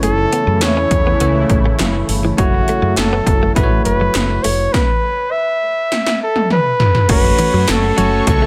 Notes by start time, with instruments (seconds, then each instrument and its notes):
Already playing: analog synth pad C#3 E3 A3 E4, tine electric piano A3 C#4 E4 C#5
0.03 fretless electric bass F#1, clean electric guitar A3, flugelhorn A4, closed hi-hat
0.18 muted clean electric guitar stroke
0.33 clean electric guitar B3, closed hi-hat
0.47 fretless electric bass F#2
0.61 fretless electric bass E2, flugelhorn C#5, snare, clap, closed hi-hat
0.77 clean electric guitar C#4
0.91 fretless electric bass E2, muted clean electric guitar stroke, kick, closed hi-hat
1.07 clean electric guitar B3
1.20 fretless electric bass C#2, tine electric piano A3 C#4 E4 C#5, clean electric guitar B3, closed hi-hat
1.50 fretless electric bass A1, muted clean electric guitar stroke, kick, closed hi-hat
1.66 clean electric guitar A3
1.79 fretless electric bass F#1, clean electric guitar F#3, snare, clap, closed hi-hat
1.95 muted clean electric guitar stroke
2.09 fretless electric bass G1, open hi-hat
2.25 clean electric guitar E3
2.37 fretless electric bass F#1, analog synth pad F#3, clean electric guitar F#3, tine electric piano A3 E4 F#4 C#5, flugelhorn F#4, kick, closed hi-hat
2.54 muted clean electric guitar stroke
2.68 clean electric guitar A3, closed hi-hat
2.82 fretless electric bass F#2
2.97 fretless electric bass F#1, flugelhorn A4, snare, clap, closed hi-hat
3.13 clean electric guitar B3
3.26 fretless electric bass F#1, muted clean electric guitar stroke, kick, closed hi-hat
3.43 clean electric guitar A3
3.55 fretless electric bass A1, tine electric piano A3 E4 F#4 B4, clean electric guitar A3, flugelhorn B4, kick, closed hi-hat
3.63 tine electric piano C#5
3.85 fretless electric bass F#1, flugelhorn B4, muted clean electric guitar stroke, closed hi-hat
4.01 clean electric guitar F#3
4.15 fretless electric bass F#1, snare, clap, closed hi-hat
4.43 fretless electric bass F1, clean electric guitar A3, flugelhorn C#5, open hi-hat
4.72 flugelhorn B4, kick, snare
5.31 flugelhorn E5
5.92 snare
6.07 snare
6.23 flugelhorn A4
6.36 high tom
6.50 flugelhorn B4, mid tom
6.80 floor tom
6.95 floor tom
7.08 fretless electric bass F#1, overdriven electric guitar F#3 C#4 F#4, tine electric piano A3 C#4 F#4 C#5, analog synth pad A3 C#5 F#5 C#6, flugelhorn B4, kick, closed hi-hat, crash
7.25 muted clean electric guitar stroke
7.39 clean electric guitar E3, closed hi-hat
7.54 fretless electric bass F#2, clean electric guitar F#3
7.68 fretless electric bass F#1, flugelhorn A4, snare, clap, closed hi-hat, tambourine
7.96 fretless electric bass F#1, clean electric guitar F#3, tine electric piano A3 C#4 F#4 C#5, overdriven electric guitar C#4 F#4, closed hi-hat
8.26 fretless electric bass C#2, overdriven electric guitar F#3 C#4 F#4, flugelhorn A4, kick, closed hi-hat
8.42 clean electric guitar A3